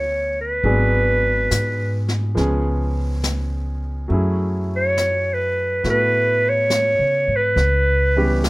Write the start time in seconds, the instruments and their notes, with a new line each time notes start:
Already playing: upright bass D2, grand piano E3 B3 C#4 D4 G#4 A4, clarinet C#5
0.41 clarinet B4
0.63 upright bass G#1, grand piano F#3 G#3 B3 D4 G#4, brush sweep
1.51 upright bass G#2, snare, hi-hat pedal
2.08 snare
2.35 upright bass C#2, grand piano F3 G#3 B3 C#4, brush sweep, snare
2.40 grand piano G#4
3.24 snare, hi-hat pedal
4.08 upright bass F#2, grand piano F#3 A3 C#4 E4, brush sweep
4.13 grand piano G#4
4.76 clarinet C#5
4.98 snare, hi-hat pedal
5.34 clarinet B4
5.83 upright bass A2, grand piano B3 E4 F#4 A4, brush sweep, snare
5.90 clarinet B4
6.49 clarinet C#5
6.70 snare, hi-hat pedal
6.99 upright bass C#3
7.28 upright bass G#2
7.36 clarinet B4
7.56 upright bass C#2, brush sweep, snare
8.16 grand piano E3 G3 B3 C#4 G4
8.44 snare, hi-hat pedal